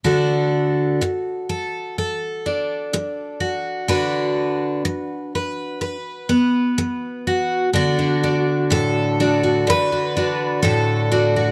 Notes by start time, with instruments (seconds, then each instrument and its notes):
0.04 twelve-string acoustic guitar D3 F#4 A4
1.01 muted twelve-string acoustic guitar stroke
1.49 twelve-string acoustic guitar A4
1.98 twelve-string acoustic guitar A4
2.46 twelve-string acoustic guitar D4
2.93 muted twelve-string acoustic guitar stroke
3.40 twelve-string acoustic guitar F#4
3.88 twelve-string acoustic guitar D3 F#4 B4
4.85 muted twelve-string acoustic guitar stroke
5.35 twelve-string acoustic guitar B4
5.81 twelve-string acoustic guitar B4
6.29 twelve-string acoustic guitar B3
6.78 muted twelve-string acoustic guitar stroke
7.27 twelve-string acoustic guitar F#4
7.73 twelve-string acoustic guitar D3 F#4
7.99 twelve-string acoustic guitar D4
8.24 twelve-string acoustic guitar D4
8.70 twelve-string acoustic guitar A2 A4
9.20 twelve-string acoustic guitar D4 F#4
9.43 twelve-string acoustic guitar F#4
9.67 twelve-string acoustic guitar D3 B4
9.92 twelve-string acoustic guitar F#4
10.17 twelve-string acoustic guitar D4 F#4
10.63 twelve-string acoustic guitar A2 A4
11.12 twelve-string acoustic guitar D4 F#4
11.36 twelve-string acoustic guitar F#4